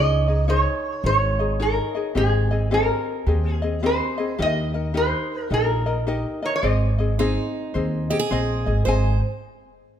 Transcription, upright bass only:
Already playing: C#2
1.04 G#1
2.15 G#1
3.27 D#2
4.39 D#2
5.51 A#1
6.63 G#1
7.75 D#2
8.31 A#1
8.67 G#1
8.87 G#1

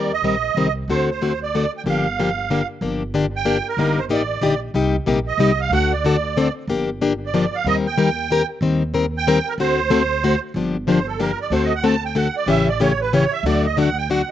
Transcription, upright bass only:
Already playing: D#2
0.22 A#1
0.55 C2
0.88 D2
1.84 G1
2.81 G1
3.77 G1
4.09 A1
4.41 A#1
4.74 C2
5.06 A#1
5.38 C2
5.70 D2
6.67 G1
7.64 D#2
8.61 D#2
9.58 D2
10.54 G1
11.50 D2
12.46 A1
13.43 D2

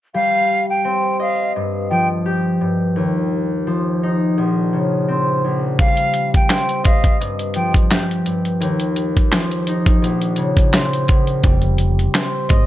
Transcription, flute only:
0.14 F5
0.70 G5
1.21 F5
1.90 G5
5.80 F5
6.35 G5
6.85 F5
7.56 G5

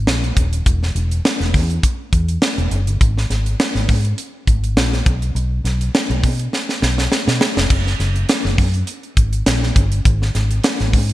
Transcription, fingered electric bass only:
0.07 A#1
0.37 D#1
0.66 E1
0.95 E1
1.40 E1
1.54 E2
2.13 E2
2.58 E1
2.71 F#1
2.88 G1
3.01 G#1
3.30 G#1
3.75 G#1
3.89 G#2
4.47 G#1
4.77 A#1
5.06 B1
5.35 B1
5.64 B1
6.10 B1
6.24 B2
6.82 B1
7.27 B2
7.57 F1
7.70 F#1
8.00 F#1
8.45 F#1
8.58 F#2
9.17 G#1
9.46 A#1
9.76 G1
10.05 G#1
10.35 G#1
10.80 G#1
10.93 G#2

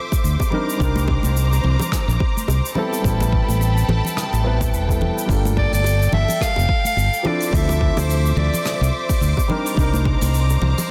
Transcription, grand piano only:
Already playing: F3 C4 D4 E4 A4
0.50 G3 C4 D4 D#4 A#4
0.77 G3 C4 D4
0.82 D#4 A#4
2.75 G3 B3 C4 E4 A4
3.01 G3 B3 C4
3.07 E4 A4
4.43 G3 B3 C4 E4 B4
4.88 G3 B3 C4 E4 A4
5.25 G3 A#3 D4
5.31 F4 A4
7.23 F3 C4 D4 E4 A4
7.49 F3 C4 D4
7.55 E4 A4
9.48 G3 C4 D4 D#4 A#4
9.74 G3 C4 D4
9.79 D#4 A#4

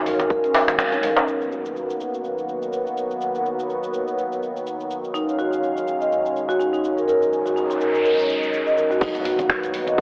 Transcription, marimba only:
0.06 A#4
0.20 A#4
0.31 A#4
0.44 C#4
0.93 D#4
1.03 A#4
1.17 C#4
5.14 D#4
5.39 F#4
6.01 D#5
6.49 F#4
6.59 D#4
6.73 D#4
6.97 A#4
7.08 A#4
7.46 F#4
7.56 D#4
7.70 D#4
7.80 A#4
7.94 A#4
8.05 A#4
8.18 C#4
8.67 D#5
8.77 A#4
8.91 F#4
9.01 D#4
9.25 F#4
9.87 D#5

